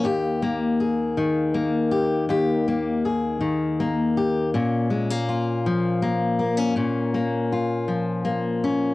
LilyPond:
\new Staff \with { instrumentName = "Steel-string acoustic guitar" } { \time 6/8 \key ees \mixolydian \tempo 4. = 54 << { g'8 bes8 aes'4 bes8 g'8 | g'8 bes8 aes'4 bes8 g'8 | des'8 aes16 bes16 f'4 bes8 bes16 des'16 | des'8 bes8 f'4 bes8 des'8 | } \\ { ees,4. ees4. | ees,4. ees4. | bes,4. f4. | bes,4. f4. | } >> }